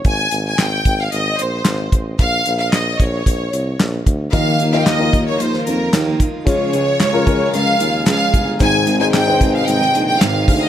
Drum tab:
HH |x-x-x-x-x-x-x-x-|x-x-x-x-x-x-x-x-|x-x-x-x-x-x-x-x-|x-x-x-x-x-x-x-x-|
CP |----x-------x---|----x-------x---|----x-------x---|----x-------x---|
SD |----o-------o---|----o-------o---|----o----o--o---|----o-------o---|
BD |o-----o-------o-|o-----o-o-----o-|o-----o-------o-|o-----o-------o-|

HH |x-x-x-x-x-x-x-o-|
CP |----x-------x---|
SD |----o----o--o---|
BD |o-----o-------o-|